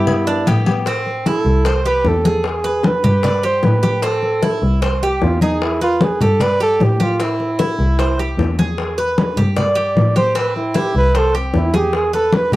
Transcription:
Already playing: double bass G2, nylon-string guitar G3 B3 G4, muted trumpet E4, cuban tres G4
0.07 cowbell, high conga, low conga
0.27 cuban tres D4, high conga
0.46 double bass A2, nylon-string guitar D3 G3 B3 G4, cuban tres G4, cowbell, high conga
0.66 nylon-string guitar G3 B3 G4, cowbell, high conga
0.86 cuban tres C4, high bongo, high conga
1.06 high bongo, high conga
1.26 cuban tres E4, muted trumpet A4, high bongo, high conga
1.45 double bass C2, high bongo
1.65 cuban tres C5, high bongo, high conga
1.85 cuban tres G4, muted trumpet B4, high conga
2.05 double bass E2, muted trumpet A4, high bongo, low bongo, high conga
2.24 cuban tres G#4, high bongo, high conga
2.44 muted trumpet G#4, high bongo, high conga
2.64 cuban tres B4, high bongo, high conga
2.83 muted trumpet B4, high bongo, high conga
3.03 double bass G2, cuban tres G4, high bongo, high conga, low conga
3.23 cuban tres D5, high bongo, high conga, low conga
3.43 cuban tres G4, muted trumpet C5, high conga
3.63 double bass A2, muted trumpet B4, high bongo, low bongo, high conga
3.83 cuban tres G4, high bongo, high conga
4.02 cuban tres C4, muted trumpet A4, high bongo, high conga
4.23 high bongo, high conga
4.43 cuban tres E4, high bongo, high conga
4.62 double bass C2, high bongo
4.82 cuban tres C5, high bongo, high conga
5.02 cuban tres G4, muted trumpet G4, high conga
5.22 double bass E2, muted trumpet F4, high bongo, low bongo, high conga
5.41 muted trumpet D#4, cuban tres G#4, high bongo, high conga
5.62 muted trumpet E4, high bongo, high conga
5.81 muted trumpet F4, cuban tres B4, high bongo, high conga
6.01 muted trumpet G#4, high bongo, high conga
6.21 double bass G2, cuban tres G4, muted trumpet A4, high bongo, high conga, low conga
6.40 muted trumpet B4, cuban tres D5, high bongo, high conga, low conga
6.60 cuban tres G4, muted trumpet A4, high conga
6.79 double bass A2, high bongo, low bongo, high conga
6.83 muted trumpet G4
7.00 muted trumpet F4, cuban tres G4, high bongo, high conga
7.20 cuban tres C4, muted trumpet E4, high bongo, high conga
7.40 high bongo, high conga
7.59 cuban tres E4, high bongo, high conga
7.79 double bass C2, high bongo
7.99 cuban tres C5, high bongo, high conga
8.19 cuban tres G4, high conga
8.37 double bass E2, high bongo, low bongo, high conga
8.59 cuban tres G#4, high bongo, high conga
8.78 high bongo, high conga
8.98 cuban tres B4, high bongo, high conga
9.18 high bongo, high conga
9.37 double bass G2, cuban tres G4, high bongo, high conga, low conga
9.56 cuban tres D5, muted trumpet D5, high bongo, high conga, low conga
9.75 cuban tres G4, high conga
9.96 double bass A2, high bongo, low bongo, high conga
10.16 cuban tres G4, muted trumpet C5, high bongo, high conga
10.35 cuban tres C4, muted trumpet B4, high bongo, high conga
10.56 muted trumpet E4, high bongo, high conga
10.74 cuban tres E4, muted trumpet G4, high bongo, high conga
10.95 double bass C2, muted trumpet B4, high bongo
11.15 muted trumpet A4, cuban tres C5, high bongo, high conga
11.34 muted trumpet C4, cuban tres G4, high conga
11.54 double bass E2, muted trumpet E4, high bongo, low bongo, high conga
11.74 muted trumpet G4, cuban tres G#4, high bongo, high conga
11.93 muted trumpet G#4, high bongo, high conga
12.13 muted trumpet A4, cuban tres B4, high bongo, high conga
12.32 muted trumpet B4, high bongo, high conga
12.52 double bass G2, high conga, low conga

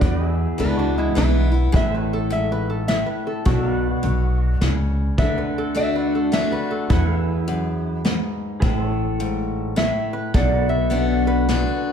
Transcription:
Already playing: resonator guitar played with a steel bar D5
0.01 steel-string acoustic guitar E2, upright bass E2, pedal steel guitar F#4 B4 D5, kick, closed hi-hat
0.26 pedal steel guitar G#4 E5
0.58 upright bass C#2, steel-string acoustic guitar E3 G#3 B3 E4, resonator guitar played with a steel bar D4 B4, closed hi-hat
0.79 resonator guitar played with a steel bar D4 F#4
0.98 resonator guitar played with a steel bar G#3 E4
1.15 upright bass B1, steel-string acoustic guitar E3 G#3 B3 E4, resonator guitar played with a steel bar E4, snare, closed hi-hat
1.52 steel-string acoustic guitar B3 E4
1.72 upright bass A1, steel-string acoustic guitar A2, pedal steel guitar G#4 B4 E5, resonator guitar played with a steel bar E5, kick, closed hi-hat
1.93 pedal steel guitar A4, resonator guitar played with a steel bar B4
1.99 pedal steel guitar C#5
2.13 resonator guitar played with a steel bar A4
2.30 steel-string acoustic guitar G#2, resonator guitar played with a steel bar E5, closed hi-hat
2.52 resonator guitar played with a steel bar B4
2.70 resonator guitar played with a steel bar A4
2.88 steel-string acoustic guitar A2, resonator guitar played with a steel bar E5, snare, closed hi-hat
3.06 resonator guitar played with a steel bar B4
3.27 resonator guitar played with a steel bar A4
3.45 upright bass B1, steel-string acoustic guitar B2, resonator guitar played with a steel bar F#4, pedal steel guitar A4 D5, kick, closed hi-hat
3.50 pedal steel guitar E5
3.73 pedal steel guitar B4 F#5
4.03 upright bass B1, steel-string acoustic guitar B2, closed hi-hat
4.61 upright bass C#2, steel-string acoustic guitar C#3, snare, closed hi-hat
5.18 upright bass D2, steel-string acoustic guitar D3, pedal steel guitar B4 D5 F#5, resonator guitar played with a steel bar E5, kick, closed hi-hat
5.38 resonator guitar played with a steel bar B4
5.43 pedal steel guitar A4
5.58 resonator guitar played with a steel bar A4
5.75 steel-string acoustic guitar D3 A3 D4 F#4, resonator guitar played with a steel bar E5, closed hi-hat
5.96 resonator guitar played with a steel bar B4
6.15 resonator guitar played with a steel bar A4
6.32 steel-string acoustic guitar D3 A3 D4 F#4, resonator guitar played with a steel bar E5, snare, closed hi-hat
6.52 resonator guitar played with a steel bar B4
6.71 resonator guitar played with a steel bar A4
6.90 steel-string acoustic guitar E2, upright bass E2, resonator guitar played with a steel bar E4, pedal steel guitar A4 B4 F#5, kick, closed hi-hat
7.10 pedal steel guitar G#4
7.18 pedal steel guitar E5
7.47 steel-string acoustic guitar F#2, closed hi-hat
8.05 steel-string acoustic guitar G#2, snare, closed hi-hat
8.60 upright bass A1, steel-string acoustic guitar A2, pedal steel guitar G#4 B4 E5, kick, closed hi-hat
8.80 pedal steel guitar A4
8.86 pedal steel guitar C#5
9.19 steel-string acoustic guitar G#2, closed hi-hat
9.76 steel-string acoustic guitar A2, resonator guitar played with a steel bar E5, snare, closed hi-hat
10.13 resonator guitar played with a steel bar B4
10.34 upright bass B1, steel-string acoustic guitar B2, pedal steel guitar A4 D5 F#5, resonator guitar played with a steel bar D5, kick, closed hi-hat
10.60 pedal steel guitar B4
10.69 resonator guitar played with a steel bar E5
10.90 steel-string acoustic guitar D3 B3 D4 F#4, closed hi-hat
11.27 resonator guitar played with a steel bar B4
11.49 steel-string acoustic guitar D3 B3 D4 F#4, snare, closed hi-hat

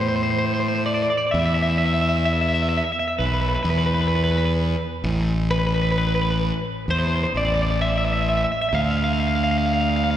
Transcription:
Already playing: fingered electric bass A2
0.01 clean electric guitar C5
0.08 clean electric guitar C5
0.16 clean electric guitar C5
0.23 clean electric guitar C5
0.30 clean electric guitar C5
0.38 clean electric guitar C5
0.46 clean electric guitar C5
0.54 clean electric guitar C5
0.60 clean electric guitar C5
0.68 clean electric guitar C5
0.75 clean electric guitar C5
0.86 clean electric guitar D5
0.94 clean electric guitar D5
1.02 clean electric guitar D5
1.10 clean electric guitar D5
1.17 clean electric guitar D5
1.27 clean electric guitar D5
1.31 fingered electric bass E2, clean electric guitar E5
1.39 clean electric guitar E5
1.45 clean electric guitar E5
1.54 clean electric guitar E5
1.62 clean electric guitar E5
1.70 clean electric guitar E5
1.78 clean electric guitar E5
1.86 clean electric guitar E5
1.94 clean electric guitar E5
2.01 clean electric guitar E5
2.09 clean electric guitar E5
2.17 clean electric guitar E5
2.25 clean electric guitar E5
2.33 clean electric guitar E5
2.41 clean electric guitar E5
2.48 clean electric guitar E5
2.54 clean electric guitar E5
2.62 clean electric guitar E5
2.69 clean electric guitar E5
2.77 clean electric guitar E5
2.84 clean electric guitar E5
2.92 clean electric guitar E5
2.99 clean electric guitar E5
3.08 clean electric guitar E5
3.19 fingered electric bass B1, clean electric guitar B4
3.26 clean electric guitar B4
3.34 clean electric guitar B4
3.41 clean electric guitar B4
3.49 clean electric guitar B4
3.55 clean electric guitar B4
3.63 fingered electric bass E2, clean electric guitar B4
3.70 clean electric guitar B4
3.78 clean electric guitar B4
3.86 clean electric guitar B4
3.94 clean electric guitar B4
4.01 clean electric guitar B4
4.08 clean electric guitar B4
4.16 clean electric guitar B4
4.24 clean electric guitar B4
4.31 clean electric guitar B4
4.38 clean electric guitar B4
4.45 clean electric guitar B4
5.04 fingered electric bass A1
5.51 clean electric guitar B4
5.59 clean electric guitar B4
5.67 clean electric guitar B4
5.75 clean electric guitar B4
5.82 clean electric guitar B4
5.91 clean electric guitar B4
5.98 clean electric guitar B4
6.07 clean electric guitar B4
6.15 clean electric guitar B4
6.22 clean electric guitar B4
6.30 clean electric guitar B4
6.88 fingered electric bass E2, clean electric guitar C5
6.99 clean electric guitar C5
7.08 clean electric guitar C5
7.16 clean electric guitar C5
7.23 clean electric guitar C5
7.34 fingered electric bass A1, clean electric guitar D5
7.45 clean electric guitar D5
7.54 clean electric guitar D5
7.62 clean electric guitar D5
7.71 clean electric guitar D5
7.82 clean electric guitar E5
7.89 clean electric guitar E5
7.98 clean electric guitar E5
8.05 clean electric guitar E5
8.13 clean electric guitar E5
8.22 clean electric guitar E5
8.29 clean electric guitar E5
8.37 clean electric guitar E5
8.44 clean electric guitar E5
8.52 clean electric guitar E5
8.62 clean electric guitar E5
8.69 fingered electric bass D2, clean electric guitar E5
8.75 clean electric guitar F5
8.82 clean electric guitar F5
8.91 clean electric guitar F5
8.97 clean electric guitar F5
9.04 clean electric guitar F5
9.13 clean electric guitar F5
9.20 clean electric guitar F5
9.27 clean electric guitar F5
9.35 clean electric guitar F5
9.44 clean electric guitar F5
9.51 clean electric guitar F5
9.58 clean electric guitar F5
9.66 clean electric guitar F5
9.74 clean electric guitar F5
9.81 clean electric guitar F5
9.89 clean electric guitar F5
9.96 clean electric guitar F5
10.04 clean electric guitar F5
10.11 clean electric guitar F5

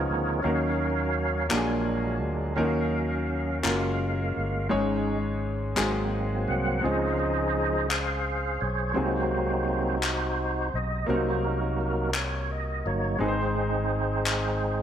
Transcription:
Already playing: grand piano C#3 B3 C#4 D#4 F4 A#4, tonewheel organ F3 B3 D#4 F4 G#4 A#4 C#5
0.10 fingered electric bass D2
0.42 fingered electric bass D#2, grand piano D#3 A#3 C#4 D#4 F#4 A#4, tonewheel organ F#3 C#4 A#4 C#5 F5
1.49 fingered electric bass A#1, grand piano A#2 A#3 D4 F4 F#4 G4, tonewheel organ F#3 G#3 D4, clap
1.57 grand piano G#4
2.23 fingered electric bass D2
2.54 grand piano D#3 A#3 C#4 D#4 F4 A#4, tonewheel organ F#3 C#4 F5
2.59 fingered electric bass D#2
2.63 grand piano F#4
3.63 fingered electric bass F#1, tonewheel organ G#3 A#3 F5, grand piano A#3 C#4 F4 F#4 A#4, clap
4.37 fingered electric bass G1
4.69 fingered electric bass G#1, grand piano G#2 G#3 C#4 D#4 G#4 C#5, tonewheel organ G#3 C#4 D#4
5.76 fingered electric bass G#1, grand piano G#2 G#3 C4 D#4 F#4 G#4, tonewheel organ F#3 A#3 C4, clap
6.48 fingered electric bass C2, tonewheel organ F#5
6.81 fingered electric bass C#2, grand piano C#3 G#3 C4 C#4 F4 G#4
6.85 tonewheel organ F3 G#3 D#4 G#4 C5 D#5
7.12 tonewheel organ F5
7.18 tonewheel organ G#4 C5 D#5
7.89 tonewheel organ G#4 C5 F5, clap
8.61 fingered electric bass B1, tonewheel organ C#5
8.94 fingered electric bass C2, grand piano C3 G#3 C4 D#4 F#4 G#4, tonewheel organ F#3 A#3 C4 D#4 F#4 C5
10.03 clap
10.74 fingered electric bass B1, tonewheel organ D#5
11.06 fingered electric bass C2, grand piano C3 A#3 C4 C#4 F#4 A#4, tonewheel organ F#3 A#3 D#4 F#4 C5
11.15 grand piano D#4
11.44 tonewheel organ A#4
11.81 tonewheel organ A#4
12.14 tonewheel organ C#5, clap
12.52 tonewheel organ D#5
12.85 fingered electric bass G1, tonewheel organ F#3 A#3 D#4 C#5
13.18 fingered electric bass G#1, grand piano G#2 G#3 C4 D#4 G#4, tonewheel organ G#3 C4 D#4 G#4
13.23 grand piano B4, tonewheel organ C5
13.28 grand piano C5
14.26 clap

